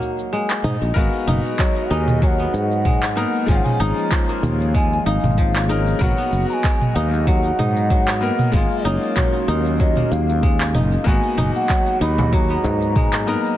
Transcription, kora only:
Already playing: F#3 G#3 A#3 D#4
0.33 G#3
0.64 D#4
0.96 G#3
1.27 D#4
1.59 F#3
1.91 D#4
2.22 F#3
2.39 B3
2.85 G#3
3.17 D#4
3.48 F3
3.80 D#4
4.11 F3
4.29 A#3
4.75 G#3
5.06 D#4
5.38 F3
5.69 D#4
6.01 F#3
6.18 B3
6.64 G#3
6.96 D#4
7.27 F#3
7.59 D#4
7.90 F#3
8.08 B3
8.53 G#3
8.85 D#4
9.16 F#3
9.48 D#4
9.80 F#3
9.97 A#3
10.43 G#3
10.74 D#4
11.06 G#3
11.38 D#4
11.69 F#3
12.01 D#4
12.33 F#3
12.50 B3
12.96 G#3
13.27 D#4

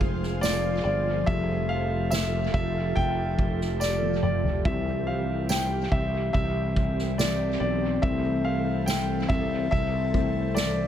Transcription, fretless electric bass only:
Already playing: F1
0.85 G1
1.27 F1
2.54 F1
2.97 F1
4.65 C2
5.92 C2
6.34 C2
7.61 B1
8.03 C2
9.30 C2
9.72 C2

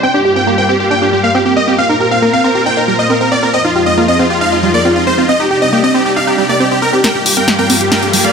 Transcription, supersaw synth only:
0.03 G5
0.14 G4
0.25 G4
0.36 G5
0.47 G4
0.58 G5
0.69 G4
0.80 G4
0.91 G5
1.02 G4
1.13 G4
1.24 F5
1.35 G4
1.46 G4
1.57 D#5
1.68 G4
1.78 F5
1.89 A#4
2.00 A#4
2.11 F5
2.22 A#4
2.33 F5
2.44 A#4
2.55 A#4
2.66 G5
2.77 A#4
2.88 A#4
2.99 D#5
3.10 A#4
3.21 A#4
3.32 D5
3.43 A#4
3.54 D#5
3.65 F4
3.75 F4
3.86 D#5
3.98 F4
4.08 D#5
4.19 F4
4.30 F4
4.41 F5
4.52 F4
4.63 F4
4.74 D5
4.85 F4
4.96 F4
5.07 C5
5.18 F4
5.29 D#5
5.40 G4
5.51 G4
5.62 D#5
5.73 G4
5.84 D#5
5.95 G4
6.06 G4
6.17 F5
6.27 G4
6.38 G4
6.49 D5
6.60 G4
6.71 G4
6.82 A#4
6.93 G4
7.04 A#4 G5
7.15 G4
7.26 G4
7.37 A#4 G5
7.48 G4
7.59 A#4 G5
7.70 G4
7.81 G4
7.92 A#4 G5
8.03 G4
8.14 G4
8.24 D5 F5

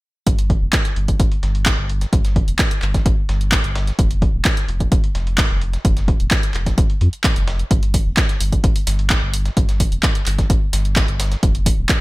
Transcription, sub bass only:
0.27 G1
0.62 F1
0.96 G1
1.43 G1
1.78 G1
2.13 G1
2.48 F1
2.82 G1
3.29 G1
3.64 G1
3.99 F1
4.34 D#1
4.68 F1
5.15 F1
5.50 F1
5.85 F1
6.20 D#1
6.54 F1
7.01 F2
7.36 F1
7.71 G1
8.06 F1
8.41 G1
8.87 G1
9.22 G1
9.57 G1
9.92 F1
10.27 G1
10.73 G1
11.08 G1
11.43 F1
11.78 D#1

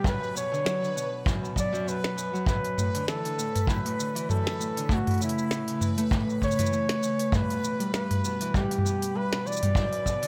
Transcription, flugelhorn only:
0.07 B4
0.38 C#5
1.59 D5
1.89 B4
2.48 B4
3.08 A4
3.69 B4
4.30 A4
4.93 F#4
5.23 E4
6.44 C#5
7.35 B4
7.95 B4
8.56 G4
9.16 B4
9.47 D5

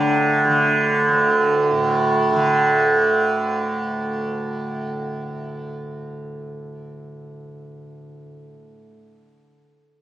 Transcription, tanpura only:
Already playing: D2 A2 D3
0.45 D3
1.08 D2
1.71 A2
2.31 D3

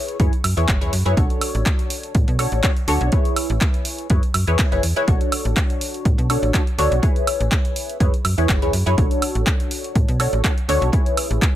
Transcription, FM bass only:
0.20 F#2
0.44 F#2
0.57 E2
0.68 F#1
0.81 E2
0.93 F#2
1.06 F#2
1.17 B1
1.55 A1
2.15 A2
2.28 B2
2.52 A1
2.88 D2
3.01 B1
3.50 A1
4.10 F#2
4.34 F#2
4.48 E2
4.72 F#1
4.83 E2
5.08 B1
5.45 A1
6.05 A2
6.18 B2
6.42 A1
6.78 D2
6.91 B1
7.40 A1
8.00 F#2
8.25 F#2
8.38 E2
8.49 F#1
8.62 E2
8.73 F#2
8.87 F#2
8.98 B1
9.35 A1
9.95 A2
10.08 B2
10.33 A1
10.68 D2
10.82 B1
11.30 A1

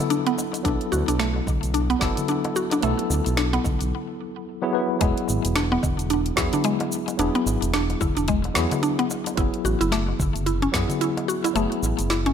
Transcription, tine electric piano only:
Already playing: F#3 B3 E4 A4
0.63 F#3 B3 E4
0.67 A4
1.99 F#3 B3 E4 A4
2.81 F#3 B3 E4 A4
4.62 F#3 B3 E4 G#4
4.73 F#3 B3 E4 B4
4.99 F#3 B3 E4
5.03 G#4
6.36 F#3 B3 E4 G#4
7.17 F#3 B3 E4 G#4
8.54 F#3 B3 E4 G#4
9.35 F#3 B3 E4 G#4
10.72 F#3 B3 E4 G#4
11.53 F#3 B3 E4 G#4

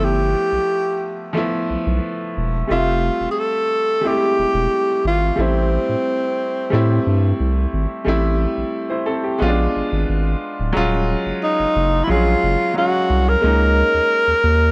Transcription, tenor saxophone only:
0.04 G4
2.71 F4
3.31 G#4
3.39 A4
4.07 G4
5.07 F4
5.41 C4
11.43 D#4
12.04 E4
12.10 F4
12.77 F#4
13.29 A#4

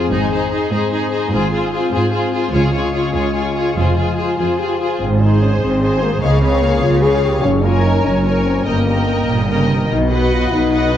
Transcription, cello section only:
0.11 G#2
0.71 G#2
1.31 G#2
1.92 G#2
2.53 C#2
3.15 C#2
3.77 F2
4.39 F2
5.02 G#2
5.62 G#2
6.23 C#3
6.83 C#3
7.44 F#2
8.05 F#2
8.67 G2
9.29 A#2
9.50 C#3
9.70 C3
9.91 B2
10.52 B2

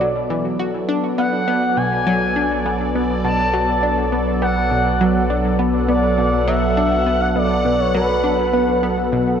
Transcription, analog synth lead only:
Already playing: D5
1.18 F#5
1.77 G#5
3.24 A5
4.41 F#5
5.89 D5
6.47 E5
7.21 F#5
7.36 D5
7.79 C#5
7.94 B4

